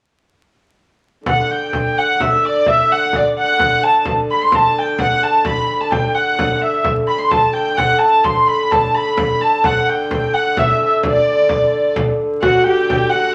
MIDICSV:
0, 0, Header, 1, 6, 480
1, 0, Start_track
1, 0, Tempo, 465116
1, 1308, Time_signature, 6, 3, 24, 8
1, 13773, End_track
2, 0, Start_track
2, 0, Title_t, "Hurdy-gurdy"
2, 0, Program_c, 0, 110
2, 1323, Note_on_c, 0, 78, 70
2, 1559, Note_off_c, 0, 78, 0
2, 1559, Note_on_c, 0, 79, 69
2, 1804, Note_off_c, 0, 79, 0
2, 1804, Note_on_c, 0, 79, 71
2, 2041, Note_off_c, 0, 79, 0
2, 2041, Note_on_c, 0, 78, 82
2, 2284, Note_off_c, 0, 78, 0
2, 2284, Note_on_c, 0, 76, 79
2, 2526, Note_off_c, 0, 76, 0
2, 2526, Note_on_c, 0, 74, 72
2, 2762, Note_off_c, 0, 74, 0
2, 2762, Note_on_c, 0, 76, 77
2, 3013, Note_off_c, 0, 76, 0
2, 3013, Note_on_c, 0, 78, 80
2, 3257, Note_off_c, 0, 78, 0
2, 3257, Note_on_c, 0, 74, 70
2, 3358, Note_off_c, 0, 74, 0
2, 3488, Note_on_c, 0, 78, 83
2, 3958, Note_off_c, 0, 78, 0
2, 3958, Note_on_c, 0, 81, 90
2, 4193, Note_off_c, 0, 81, 0
2, 4446, Note_on_c, 0, 83, 81
2, 4559, Note_off_c, 0, 83, 0
2, 4559, Note_on_c, 0, 84, 88
2, 4695, Note_off_c, 0, 84, 0
2, 4695, Note_on_c, 0, 81, 81
2, 4939, Note_off_c, 0, 81, 0
2, 4939, Note_on_c, 0, 79, 85
2, 5156, Note_off_c, 0, 79, 0
2, 5156, Note_on_c, 0, 78, 79
2, 5398, Note_off_c, 0, 78, 0
2, 5398, Note_on_c, 0, 81, 84
2, 5630, Note_on_c, 0, 83, 91
2, 5633, Note_off_c, 0, 81, 0
2, 5990, Note_off_c, 0, 83, 0
2, 5990, Note_on_c, 0, 81, 76
2, 6098, Note_on_c, 0, 79, 71
2, 6101, Note_off_c, 0, 81, 0
2, 6346, Note_off_c, 0, 79, 0
2, 6346, Note_on_c, 0, 78, 69
2, 6762, Note_off_c, 0, 78, 0
2, 6762, Note_on_c, 0, 78, 42
2, 6825, Note_off_c, 0, 78, 0
2, 6825, Note_on_c, 0, 76, 59
2, 7066, Note_off_c, 0, 76, 0
2, 7301, Note_on_c, 0, 83, 82
2, 7411, Note_on_c, 0, 84, 86
2, 7416, Note_off_c, 0, 83, 0
2, 7539, Note_off_c, 0, 84, 0
2, 7539, Note_on_c, 0, 81, 86
2, 7772, Note_off_c, 0, 81, 0
2, 7772, Note_on_c, 0, 79, 89
2, 8020, Note_off_c, 0, 79, 0
2, 8020, Note_on_c, 0, 78, 78
2, 8244, Note_off_c, 0, 78, 0
2, 8244, Note_on_c, 0, 81, 90
2, 8503, Note_off_c, 0, 81, 0
2, 8503, Note_on_c, 0, 84, 87
2, 8746, Note_off_c, 0, 84, 0
2, 8746, Note_on_c, 0, 83, 89
2, 8989, Note_off_c, 0, 83, 0
2, 8989, Note_on_c, 0, 81, 76
2, 9231, Note_off_c, 0, 81, 0
2, 9231, Note_on_c, 0, 83, 96
2, 9710, Note_off_c, 0, 83, 0
2, 9710, Note_on_c, 0, 81, 80
2, 9961, Note_off_c, 0, 81, 0
2, 9961, Note_on_c, 0, 78, 74
2, 10211, Note_off_c, 0, 78, 0
2, 10211, Note_on_c, 0, 79, 72
2, 10445, Note_off_c, 0, 79, 0
2, 10445, Note_on_c, 0, 79, 71
2, 10670, Note_off_c, 0, 79, 0
2, 10670, Note_on_c, 0, 78, 73
2, 10925, Note_off_c, 0, 78, 0
2, 10925, Note_on_c, 0, 76, 73
2, 11170, Note_off_c, 0, 76, 0
2, 11170, Note_on_c, 0, 76, 76
2, 11273, Note_off_c, 0, 76, 0
2, 11402, Note_on_c, 0, 74, 73
2, 12313, Note_off_c, 0, 74, 0
2, 12817, Note_on_c, 0, 78, 70
2, 13043, Note_on_c, 0, 79, 82
2, 13045, Note_off_c, 0, 78, 0
2, 13276, Note_off_c, 0, 79, 0
2, 13276, Note_on_c, 0, 79, 76
2, 13510, Note_on_c, 0, 78, 84
2, 13514, Note_off_c, 0, 79, 0
2, 13769, Note_off_c, 0, 78, 0
2, 13773, End_track
3, 0, Start_track
3, 0, Title_t, "Fiddle"
3, 0, Program_c, 1, 110
3, 12821, Note_on_c, 1, 66, 71
3, 13047, Note_off_c, 1, 66, 0
3, 13078, Note_on_c, 1, 67, 75
3, 13296, Note_off_c, 1, 67, 0
3, 13319, Note_on_c, 1, 67, 64
3, 13537, Note_off_c, 1, 67, 0
3, 13559, Note_on_c, 1, 66, 70
3, 13773, Note_off_c, 1, 66, 0
3, 13773, End_track
4, 0, Start_track
4, 0, Title_t, "Harp"
4, 0, Program_c, 2, 46
4, 12824, Note_on_c, 2, 66, 72
4, 13063, Note_on_c, 2, 67, 74
4, 13125, Note_off_c, 2, 66, 0
4, 13554, Note_on_c, 2, 66, 66
4, 13616, Note_off_c, 2, 67, 0
4, 13773, Note_off_c, 2, 66, 0
4, 13773, End_track
5, 0, Start_track
5, 0, Title_t, "Hurdy-gurdy"
5, 0, Program_c, 3, 110
5, 1308, Note_on_c, 3, 50, 63
5, 7063, Note_off_c, 3, 50, 0
5, 7063, Note_on_c, 3, 50, 63
5, 12835, Note_off_c, 3, 50, 0
5, 12835, Note_on_c, 3, 50, 59
5, 13773, Note_off_c, 3, 50, 0
5, 13773, End_track
6, 0, Start_track
6, 0, Title_t, "Frame drum"
6, 1304, Note_on_c, 9, 64, 84
6, 1407, Note_off_c, 9, 64, 0
6, 1550, Note_on_c, 9, 64, 22
6, 1653, Note_off_c, 9, 64, 0
6, 1787, Note_on_c, 9, 64, 75
6, 1890, Note_off_c, 9, 64, 0
6, 2273, Note_on_c, 9, 64, 75
6, 2376, Note_off_c, 9, 64, 0
6, 2515, Note_on_c, 9, 64, 21
6, 2618, Note_off_c, 9, 64, 0
6, 2748, Note_on_c, 9, 64, 75
6, 2851, Note_off_c, 9, 64, 0
6, 2994, Note_on_c, 9, 64, 22
6, 3098, Note_off_c, 9, 64, 0
6, 3230, Note_on_c, 9, 64, 66
6, 3333, Note_off_c, 9, 64, 0
6, 3710, Note_on_c, 9, 64, 84
6, 3813, Note_off_c, 9, 64, 0
6, 3951, Note_on_c, 9, 64, 23
6, 4054, Note_off_c, 9, 64, 0
6, 4183, Note_on_c, 9, 64, 81
6, 4286, Note_off_c, 9, 64, 0
6, 4426, Note_on_c, 9, 64, 22
6, 4529, Note_off_c, 9, 64, 0
6, 4666, Note_on_c, 9, 64, 82
6, 4769, Note_off_c, 9, 64, 0
6, 5144, Note_on_c, 9, 64, 80
6, 5248, Note_off_c, 9, 64, 0
6, 5383, Note_on_c, 9, 64, 24
6, 5486, Note_off_c, 9, 64, 0
6, 5622, Note_on_c, 9, 64, 82
6, 5725, Note_off_c, 9, 64, 0
6, 6109, Note_on_c, 9, 64, 79
6, 6213, Note_off_c, 9, 64, 0
6, 6592, Note_on_c, 9, 64, 81
6, 6695, Note_off_c, 9, 64, 0
6, 6829, Note_on_c, 9, 64, 25
6, 6932, Note_off_c, 9, 64, 0
6, 7064, Note_on_c, 9, 64, 81
6, 7167, Note_off_c, 9, 64, 0
6, 7312, Note_on_c, 9, 64, 25
6, 7416, Note_off_c, 9, 64, 0
6, 7547, Note_on_c, 9, 64, 80
6, 7650, Note_off_c, 9, 64, 0
6, 8030, Note_on_c, 9, 64, 83
6, 8133, Note_off_c, 9, 64, 0
6, 8270, Note_on_c, 9, 64, 25
6, 8373, Note_off_c, 9, 64, 0
6, 8506, Note_on_c, 9, 64, 84
6, 8609, Note_off_c, 9, 64, 0
6, 8756, Note_on_c, 9, 64, 23
6, 8859, Note_off_c, 9, 64, 0
6, 8999, Note_on_c, 9, 64, 81
6, 9102, Note_off_c, 9, 64, 0
6, 9467, Note_on_c, 9, 64, 87
6, 9571, Note_off_c, 9, 64, 0
6, 9714, Note_on_c, 9, 64, 26
6, 9817, Note_off_c, 9, 64, 0
6, 9948, Note_on_c, 9, 64, 91
6, 10051, Note_off_c, 9, 64, 0
6, 10194, Note_on_c, 9, 64, 26
6, 10297, Note_off_c, 9, 64, 0
6, 10433, Note_on_c, 9, 64, 78
6, 10536, Note_off_c, 9, 64, 0
6, 10909, Note_on_c, 9, 64, 88
6, 11012, Note_off_c, 9, 64, 0
6, 11154, Note_on_c, 9, 64, 24
6, 11257, Note_off_c, 9, 64, 0
6, 11386, Note_on_c, 9, 64, 87
6, 11489, Note_off_c, 9, 64, 0
6, 11859, Note_on_c, 9, 64, 80
6, 11963, Note_off_c, 9, 64, 0
6, 12345, Note_on_c, 9, 64, 87
6, 12448, Note_off_c, 9, 64, 0
6, 12823, Note_on_c, 9, 64, 85
6, 12927, Note_off_c, 9, 64, 0
6, 13063, Note_on_c, 9, 64, 25
6, 13167, Note_off_c, 9, 64, 0
6, 13311, Note_on_c, 9, 64, 82
6, 13414, Note_off_c, 9, 64, 0
6, 13773, End_track
0, 0, End_of_file